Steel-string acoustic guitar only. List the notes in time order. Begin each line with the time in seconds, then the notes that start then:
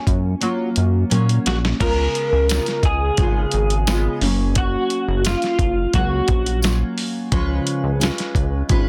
Already playing: A#3 C#4 F4
0.41 F#3 A#3 C#4 F4
1.10 F#3 A#3 C#4
1.79 C#3 G#3 B3 F4
2.48 C#3 G#3 B3 F4
3.18 C#3 G#3 B3 F4
3.87 C#3 G#3 B3 F4
4.22 F#3 A#3 C#4
5.93 F#3 A#3 C#4
6.62 F#3 A#3 C#4 F4
7.32 C#3 F3 G#3 C#4 F4 B4
8.00 G#3 C#4 F4 B4
8.69 G#3 C#4 F4 B4